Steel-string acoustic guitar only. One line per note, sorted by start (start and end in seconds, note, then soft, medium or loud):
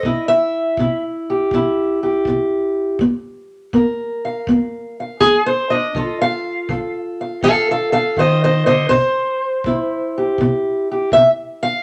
0.00 0.28 D#5 medium
0.05 0.74 C3 medium
0.05 0.79 E4 soft
0.28 1.03 E5 loud
0.79 1.48 C3 medium
0.79 1.53 E4 soft
1.30 2.02 G4 soft
1.54 2.22 C3 medium
1.54 2.99 E4 medium
2.03 3.01 G4 soft
2.28 2.96 C3 medium
3.01 3.70 A#3 medium
3.74 4.43 A#3 medium
3.74 5.46 A#4 soft
4.25 4.98 F5 medium
4.49 5.17 A#3 medium
5.00 5.70 F5 soft
5.20 5.92 A#3 medium
5.20 5.46 G#4 loud
5.46 5.71 C5 loud
5.70 5.93 D4 soft
5.70 6.20 D#5 medium
5.96 6.65 F3 medium
5.96 8.89 F4 medium
5.96 6.69 A4 medium
6.21 6.95 F5 loud
6.69 7.38 F3 medium
6.69 7.42 A4 soft
7.21 7.43 F5 medium
7.43 8.13 F3 medium
7.43 7.68 A4 medium
7.43 7.68 F5 loud
7.71 7.91 A4 medium
7.71 7.92 F5 medium
7.92 8.17 A4 medium
7.92 8.18 F5 medium
8.17 8.67 D#3 medium
8.17 8.43 C5 medium
8.17 8.43 D#5 loud
8.44 8.65 C5 medium
8.44 8.66 D#5 loud
8.66 8.90 D3 medium
8.66 8.88 C5 medium
8.66 8.92 D#5 loud
8.89 9.60 C3 medium
8.89 10.38 C5 loud
9.66 10.35 C3 medium
9.66 11.83 E4 soft
10.18 10.90 G4 medium
10.41 11.09 C3 medium
10.91 11.12 G4 soft
11.13 11.83 C3 medium
11.13 11.29 E5 loud
11.63 11.83 F5 loud